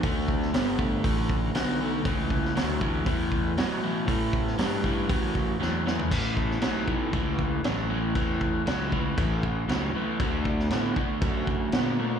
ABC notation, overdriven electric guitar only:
X:1
M:4/4
L:1/8
Q:1/4=118
K:Amix
V:1 name="Overdriven electric guitar" clef=bass
[D,A,]2 [D,B,] [D,A,] [D,A,]2 [D,B,] [D,A,] | [A,,E,]2 [A,,F,] [A,,E,] [A,,E,]2 [A,,F,] [A,,E,] | [A,,E,]2 [A,,F,] [A,,E,] [A,,E,]2 [A,,F,] [A,,E,] | [A,,E,]2 [A,,F,] [A,,E,] [A,,E,]2 [A,,F,] [A,,E,] |
[A,,E,]2 [A,,F,] [A,,E,] [A,,E,]2 [A,,F,] [A,,E,] | [D,A,]2 [D,B,] [D,A,] [D,A,]2 [D,B,] [D,A,] |]